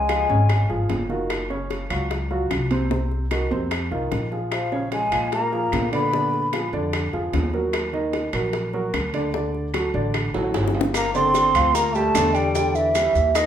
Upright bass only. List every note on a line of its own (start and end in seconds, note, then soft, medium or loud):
0.00 0.23 C#2 medium
0.29 0.67 G#1 medium
0.70 0.88 G#1 medium
0.90 1.85 F#1 medium
1.90 2.47 C#2 medium
2.50 3.45 C2 medium
3.51 3.89 F2 medium
3.91 4.10 C2 medium
4.12 5.06 A#1 medium
5.12 5.69 A#2 medium
5.73 6.67 A#2 medium
6.73 7.10 F2 medium
7.13 7.32 F2 medium
7.33 8.28 D#2 medium
8.33 8.90 A#1 medium
8.93 9.88 D2 medium
9.94 10.31 A1 medium
10.34 10.53 A1 medium
10.55 11.49 G1 medium
11.55 12.11 D2 loud
12.15 13.09 E2 medium
13.15 13.46 D#2 medium